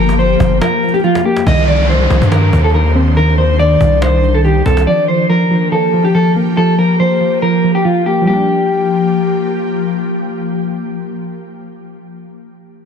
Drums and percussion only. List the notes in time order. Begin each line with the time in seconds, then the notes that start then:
0.09 cajon slap
0.40 cajon bass
0.62 cajon slap
0.83 cajon slap
0.88 cajon slap
0.94 cajon slap
0.99 cajon slap
1.03 cajon slap
1.15 cajon slap
1.37 cajon slap
1.47 cajon bass
1.68 cajon slap
1.75 cajon slap
1.82 cajon slap
1.89 cajon slap
2.10 cajon slap
2.22 cajon bass
2.32 cajon slap
2.53 cajon bass
2.59 cajon slap
2.64 cajon slap
2.69 cajon slap
2.74 cajon slap
3.17 cajon slap
3.59 cajon slap
3.81 cajon bass
4.02 cajon slap
4.23 cajon slap
4.44 cajon slap
4.66 cajon bass
4.77 cajon slap